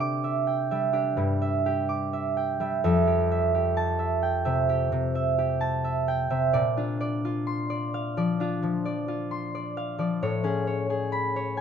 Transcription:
Already playing: C3 D4 G4 E5
0.00 D6
0.24 E5
0.47 G5
0.71 G3 E5
0.93 D4 G4
1.17 G2 G3
1.42 E5
1.66 G4
1.89 D6
2.13 E5
2.37 G5
2.60 G3 E5
2.84 F2 E5
3.07 G4
3.31 E5
3.55 G4
3.77 A5
3.99 E5
4.23 G5
4.45 C3 E5
4.69 G4
4.92 C3
5.15 E5
5.38 G4
5.61 A5
5.84 E5
6.08 G5
6.30 C3 E5
6.53 A#2 D5
6.77 D4 F4
7.01 D5
7.25 F4
7.47 C6
7.70 D5
7.94 F5
8.17 F3 D5
8.40 D4 F4
8.63 F3
8.85 D5
9.08 F4
9.31 C6
9.55 D5
9.77 F5
9.99 F3 D5
10.23 A2 C#5
10.44 C#4 G#4
10.67 C#5
10.90 G#4
11.12 B5
11.36 C#5
11.57 G#5

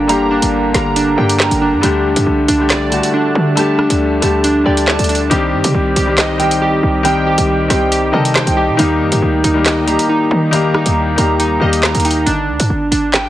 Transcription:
Already playing: G1 D3 G3 A#3 D4 G4 G5
0.07 D3 G3 A#3 G4 A#5, closed hi-hat
0.31 D4
0.42 G1, closed hi-hat
0.72 G1 D3 G3 A#3 A#4 A#5, snare, closed hi-hat
0.96 D4, closed hi-hat
1.16 G2 D3 G3 A#3 G4 G5
1.29 closed hi-hat
1.40 A#5, snare, clap
1.51 G1, closed hi-hat
1.61 D4
1.73 G2
1.81 D2 D3 G3 A3 D4 G4, closed hi-hat
2.05 D#2
2.16 F#2, closed hi-hat
2.27 C2
2.48 C2 D4, closed hi-hat
2.58 D3 G3 A3 G4
2.70 D5, snare, clap, closed hi-hat
2.90 D3 G3 A3 F#4 A5, closed hi-hat
3.03 closed hi-hat
3.14 D4
3.35 D3
3.55 D3 G3 A3 G4 A5, closed hi-hat
3.79 D4, cross-stick
3.90 D2, closed hi-hat
4.20 D2 D3 G3 A3 G4 A5, closed hi-hat
4.44 D4, closed hi-hat
4.64 D2 D3 G3 A3 G4 D5 G5
4.77 closed hi-hat
4.88 D5 A5, snare, clap
4.99 D2, closed hi-hat
5.04 closed hi-hat
5.09 D4 D5, closed hi-hat
5.15 closed hi-hat
5.30 C2 D#3 G3 C4 D#4 G4, closed hi-hat
5.53 G2
5.64 C3, closed hi-hat
5.74 C2
5.96 C2 G4, closed hi-hat
6.06 D#3 G3 C4 G4
6.18 D#5, snare, clap, closed hi-hat
6.38 D#3 G3 C4 G4 G5, closed hi-hat
6.51 closed hi-hat
6.62 G4
6.83 C2
7.03 D#3 G3 C4 G4 G5, closed hi-hat
7.27 G4
7.38 C2, closed hi-hat
7.68 C2 D#3 G3 C4 G4 G5, snare, closed hi-hat
7.92 G4, closed hi-hat
8.12 C3 D#3 G3 C4 A4 A#4 D#5
8.25 closed hi-hat
8.35 C5 G5, snare, clap
8.47 C2, closed hi-hat
8.57 G4 G5
8.69 C3
8.77 D#2 D#3 G3 A#3 D#4 G4, closed hi-hat
9.01 F#2
9.12 G2, closed hi-hat
9.22 D2
9.44 D2 D#4, closed hi-hat
9.54 D#3 G3 A#3 G4
9.66 D#5, snare, clap, closed hi-hat
9.86 D#3 G3 A#3 G4 A#5, closed hi-hat
9.99 closed hi-hat
10.09 D#4
10.31 D#3
10.51 D#3 G3 A#3 G4 A#5, closed hi-hat
10.74 D#4, cross-stick
10.86 D#2, closed hi-hat
11.16 D#2 D#3 G3 A#3 G4 A#5, closed hi-hat
11.40 D#4, closed hi-hat
11.60 D#2 D#3 G3 A#3 G4 D#5
11.73 closed hi-hat
11.83 D#5 A#5, snare, clap
11.95 D#2, closed hi-hat
12.00 closed hi-hat
12.05 D#4 G5, closed hi-hat
12.11 closed hi-hat
12.26 G1 D4, closed hi-hat
12.48 D2
12.60 G2, closed hi-hat
12.70 G1
12.91 G1 D4, closed hi-hat
13.13 G5, snare, clap, closed hi-hat

